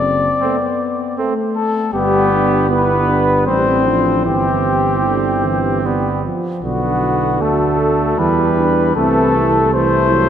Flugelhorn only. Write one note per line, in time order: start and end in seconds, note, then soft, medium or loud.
0.40 0.56 C4 soft
1.18 1.34 C4 soft
1.94 2.66 B3 soft
2.69 3.45 B3 soft
3.47 4.24 C4 soft
4.26 5.87 C4 soft
5.86 6.32 B3 soft
6.64 7.42 B3 soft
7.41 8.20 A3 soft
8.19 8.96 G3 soft
8.96 9.72 A3 soft
9.72 10.29 A3 soft